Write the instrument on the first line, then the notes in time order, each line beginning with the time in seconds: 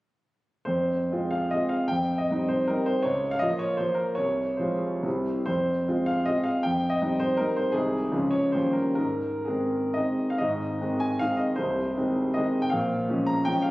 grand piano
0.65 F2 C5
1.12 G#3 C4 F4
1.31 F5
1.51 G#3 C4 F4 D#5
1.69 F5
1.88 F2 G5
2.18 D#5
2.31 G3 C4 D#4
2.49 C5
2.68 G3 C4 D#4 A#4
2.86 C5
3.03 C#2 C#5
3.31 F5
3.39 F3 A#3 F4 D#5
3.59 C#5
3.77 F3 A#3 F4 C5
3.94 A#4
4.15 C2 C#5
4.57 F3 G#3 F4 C5
5.03 C2 G3 C4 E4
5.46 F2 C5
5.88 G#3 C4 F4
6.06 F5
6.26 G#3 C4 F4 D#5
6.44 F5
6.63 F2 G5
6.90 D#5
7.02 G3 C4 D#4
7.20 C5
7.37 G3 C4 D#4 A#4
7.56 C5
7.72 C2 D#3 G#3 D#4 G#4
8.12 C#2 F3 G#3 C#4
8.31 C#5
8.52 D#2 F3 G3 C#4 C5
8.73 A#4
8.95 G#2 A#4
9.45 D#3 G#3 C4 G#4
9.94 D#3 G#3 C4 D#5
10.30 F5
10.38 G#1 G#2 D#5
10.81 D#3 G#3 C4
11.00 G#5
11.19 D#3 G#3 C4 F5
11.37 D#5
11.56 C1 C2 C5
11.97 D#3 G#3 C4
12.34 D#3 G#3 C4 D#5
12.62 G5
12.70 A#1 A#2 F5
13.09 F3 G#3 C#4
13.26 A#5
13.45 F3 G#3 C#4 G5
13.62 F5